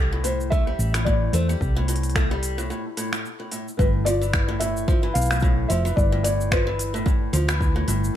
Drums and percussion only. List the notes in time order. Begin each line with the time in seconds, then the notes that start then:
0.24 open hi-hat, shaker
0.41 shaker
0.52 kick, shaker
0.80 shaker
0.94 finger snap, open hi-hat, shaker
1.06 kick, shaker
1.33 open hi-hat, shaker
1.50 shaker
1.61 kick, shaker
1.88 open hi-hat, shaker
1.96 open hi-hat
2.03 open hi-hat, shaker
2.10 open hi-hat
2.15 finger snap, kick, shaker
2.43 open hi-hat, shaker
2.59 shaker
2.71 shaker
2.97 open hi-hat, shaker
3.13 finger snap, shaker
3.25 shaker
3.52 open hi-hat, shaker
3.68 shaker
3.79 kick, shaker
4.06 open hi-hat, shaker
4.23 shaker
4.33 finger snap, kick, shaker
4.61 open hi-hat, shaker
4.77 shaker
4.88 kick, shaker
5.15 open hi-hat, shaker
5.21 shaker
5.25 shaker
5.31 finger snap, shaker
5.35 shaker
5.40 kick, shaker
5.44 shaker
5.70 open hi-hat, shaker
5.86 shaker
5.97 kick, shaker
6.25 open hi-hat, shaker
6.41 shaker
6.52 finger snap, kick, shaker
6.79 open hi-hat, shaker
6.96 shaker
7.06 kick, shaker
7.34 open hi-hat, shaker
7.49 finger snap, shaker
7.61 kick, shaker
7.88 open hi-hat, shaker
8.04 shaker